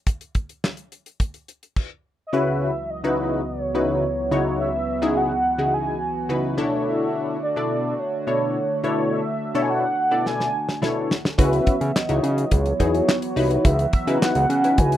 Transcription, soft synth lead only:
2.27 2.35 D#5 medium
2.34 2.92 E5 loud
2.91 3.49 D#5 loud
3.47 4.60 C#5 medium
4.60 5.18 E5 loud
5.17 5.75 F#5 loud
5.74 6.30 G#5 loud
6.86 7.39 E5 medium
7.43 7.93 D5 medium
7.93 8.01 D5 medium
8.00 9.13 C#5 medium
9.13 9.59 E5 loud
9.63 9.71 G#5 medium
9.70 10.26 F#5 loud
10.27 10.79 G#5 loud
11.39 11.97 E5 medium
11.96 12.54 D#5 medium
12.52 13.66 C#5 loud
13.65 13.93 E5 loud
13.93 14.20 E5 loud
14.22 14.80 F#5 loud
14.78 14.97 G#5 loud

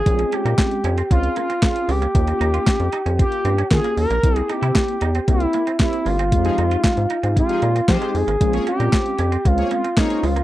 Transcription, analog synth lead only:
0.00 0.36 G#4 loud
0.34 1.11 G4 loud
1.12 1.35 F4 loud
1.38 1.61 F4 medium
1.64 1.92 F4 loud
1.91 3.20 G4 loud
3.21 3.68 G4 loud
3.73 3.96 G#4 loud
3.99 4.37 A#4 loud
4.37 4.52 G#4 loud
4.51 5.28 G4 loud
5.29 5.77 E4 loud
5.81 6.09 E4 loud
6.08 7.37 F4 loud
7.38 7.92 F4 loud
7.90 8.18 G4 loud
8.16 8.68 G#4 loud
8.69 9.48 G4 loud
9.47 9.72 F4 loud
9.73 9.96 F4 medium
9.99 10.26 D#4 medium
10.25 10.44 F4 loud

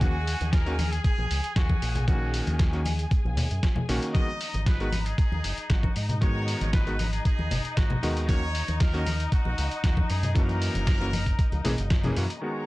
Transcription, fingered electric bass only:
0.00 0.33 D#2 medium
0.41 0.98 D#2 loud
1.18 1.26 A#1 medium
1.31 1.39 C#2 medium
1.56 1.74 D#2 loud
1.82 2.40 A#1 medium
2.47 3.05 D#2 medium
3.25 3.37 A#1 medium
3.37 3.46 D#2 medium
3.51 3.59 F#2 medium
3.89 3.98 A#1 medium
4.54 5.12 G#1 medium
5.32 5.40 D#2 medium
5.44 5.53 F#1 medium
5.58 muted fingered electric bass stroke soft
5.70 5.88 G#1 medium
5.96 6.54 G#2 medium
6.61 7.19 G#1 medium
7.39 7.47 D#2 medium
7.52 7.60 F#1 medium
7.77 7.94 G#1 loud
8.03 8.61 D#2 medium
8.68 9.26 D#2 medium
9.46 9.54 A#1 medium
9.58 9.67 C#2 medium
9.84 10.01 D#2 loud
10.10 10.68 F#2 medium
10.75 11.33 F#1 loud
11.53 11.61 C#2 medium
11.65 11.74 A#1 medium
11.79 12.10 F#1 medium
12.17 12.26 F#2 medium

